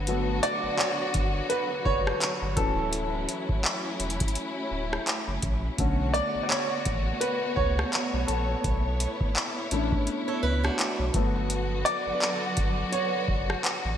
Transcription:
Already playing: G1 D3 F#3 B3 F#4
0.07 F#3 A3 B3, closed hi-hat
0.43 D5, closed hi-hat
0.63 G1
0.78 C#5, clap
1.14 G1, kick, closed hi-hat
1.49 B4, closed hi-hat
1.85 F#1 C#5, kick
2.07 cross-stick
2.21 clap, closed hi-hat
2.42 G1
2.56 D1 E3 F#3 A3 C#4 E4 A4, kick, closed hi-hat
2.93 closed hi-hat
3.29 closed hi-hat
3.49 E1, kick
3.65 clap
4.00 E1, closed hi-hat
4.10 closed hi-hat
4.20 kick, closed hi-hat
4.28 closed hi-hat
4.35 closed hi-hat
4.71 D1
4.93 cross-stick
5.07 clap, closed hi-hat
5.28 F#1
5.42 A#1, kick, closed hi-hat
5.78 B1 D3 A3 B3 C#4 F#4 C#5, kick, closed hi-hat
6.14 D5, closed hi-hat
6.35 A1
6.43 D5
6.49 C#5, clap
6.85 A1, kick, closed hi-hat
7.21 B4, closed hi-hat
7.56 C#2 C#5, kick
7.79 cross-stick
7.93 clap, closed hi-hat
8.14 B1
8.27 A#1 A4, closed hi-hat
8.64 B1 E4, kick, closed hi-hat
9.00 closed hi-hat
9.21 A1, kick
9.36 clap
9.71 A1 A3 C#4 D4, closed hi-hat
9.92 kick
10.07 closed hi-hat
10.28 A4 C#5
10.43 C#2 B4
10.64 D4 F#4, cross-stick
10.79 clap, closed hi-hat
10.99 B1
11.14 G1 D3 F#3 A3 B3 F#4, kick, closed hi-hat
11.50 closed hi-hat
11.85 D5, closed hi-hat
12.07 G1
12.22 clap
12.57 G1, kick, closed hi-hat
12.92 C#5, closed hi-hat
13.28 F#1, kick
13.50 cross-stick
13.64 clap, closed hi-hat
13.85 A1

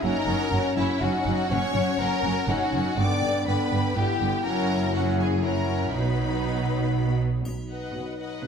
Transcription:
0.03 F#1 F#2 F#3 C#4 D#4 A#4 F#5 A#5
0.27 F#1 F#2 F#3 C#4
0.52 F#1 F#2 F#3 C#4
0.76 F#1 F#2 F#3 C#4 E4 E5
1.01 F#1 F#2 F#3 C#4 D#4 F#4 F#5
1.25 F#1 F#2 F#3 C#4
1.49 F#1 F#2 F#3 C#4 C#5 F#5 C#6
1.75 F#1 F#2 F#3 C#4
1.99 F#1 F#2 F#3 C#4 A#4 F#5 A#5
2.24 F#1 F#2 F#3 C#4
2.48 F#1 F#2 F#3 C#4 D#4 F#4 F#5
2.73 F#1 F#2 F#3 C#4
2.97 G1 G2 D3 B3 D4 D5 G5 D6
3.22 G1 G2 D3 B3
3.46 G1 G2 D3 B3 B4 G5 B5
3.71 G1 G2 D3 B3
3.95 G1 G2 D3 B3 E4 G4 G5
4.20 G1 G2 D3 B3
4.45 F#1 F#2 F#3 C#4 A#4 F#5 A#5
4.93 F#3 C#4 F#4 F#5
5.19 G#4 G#5
5.43 F#3 C#4 A#4 F#5 A#5
5.93 B1 B2 F#3 D#4 B4 F#5 B5
7.43 B1 B2 F#3 D#4, triangle
7.69 B4 D#5 F#5
7.94 B2
8.19 B4 D#5 F#5
8.43 B2

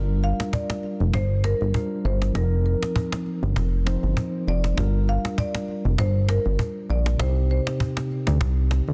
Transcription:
Already playing: G1 G3 D4 F4 A#4 D5
0.23 F5, cajon slap
0.40 cajon slap
0.53 D5, cajon bass
0.70 cajon slap
0.83 cajon slap
1.00 F1, cajon slap
1.14 G1 C5, cajon bass
1.44 A#4, cajon slap
1.61 G1, cajon slap
1.73 G3 D4 F4 A#4, cajon bass
2.05 G1 C5, cajon slap
2.22 cajon slap
2.33 F1 F3 C4 D#4 A#4, cajon bass, cajon slap
2.38 A4
2.44 A#4
2.65 A#4, cajon slap
2.83 cajon slap
2.96 cajon bass
3.12 cajon slap
3.26 cajon slap
3.43 G1, cajon slap
3.56 F1, cajon bass
3.85 F3 C4 D#4 C5, cajon slap
4.03 G1, cajon slap
4.17 cajon bass
4.47 F1 D5, cajon slap
4.64 cajon slap
4.75 G1 G3 D4 F4, cajon bass, cajon slap
4.80 A#4
5.08 F5, cajon slap
5.25 cajon slap
5.38 D5, cajon bass
5.55 cajon slap
5.68 cajon slap
5.85 F1, cajon slap
5.98 G1 C5, cajon bass
6.29 A#4, cajon slap
6.45 G1, cajon slap
6.59 cajon bass
6.89 A#1 D5, cajon slap
7.06 cajon slap
7.17 C2 C3 C4 D#4 C5, cajon bass, cajon slap
7.22 G4
7.50 C5, cajon slap
7.67 cajon slap
7.80 cajon bass
7.97 cajon slap
8.10 cajon slap
8.27 D2, cajon slap
8.41 C2, cajon bass
8.71 cajon slap
8.88 D2, cajon slap

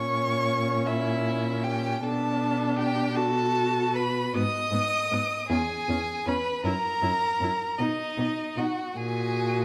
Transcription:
Already playing: A#2 C#4 C#5 C#6
0.87 E4 E5
1.64 G4 G5
2.02 B2 D4 A4 A5
2.77 G4 G5
3.15 F#4 A4 A5
3.93 B4 B5
4.32 G#2 B3 D#5 D#6
4.71 G#2 B3
5.11 G#2 B3
5.49 E2 C#4 G#4 G#5
5.89 E2 C#4
6.26 E2 C#4 B4 B5
6.64 F#2 E4 A#4 A#5
7.02 F#2 E4
7.40 F#2 E4
7.79 B2 D#4 D#5
8.18 B2 D#4
8.56 B2 D#4 F#4 F#5
8.96 A#2 F#4 G#4 G#5

